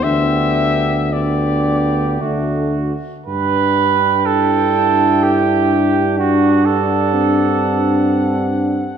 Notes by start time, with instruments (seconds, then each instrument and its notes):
0.03 tuba D2, trombone B3, euphonium D4, flugelhorn G4, cornet E5
1.13 trombone B3, euphonium D4, flugelhorn G4, cornet D5
2.21 tuba D2, trombone A3, euphonium D4, flugelhorn F#4
3.26 tuba G2, trombone D4, flugelhorn B4, cornet G5
4.26 euphonium E4, flugelhorn A4
5.23 flugelhorn G4
6.18 euphonium D4, flugelhorn F#4, cornet F#5
6.65 flugelhorn A4
7.13 euphonium C4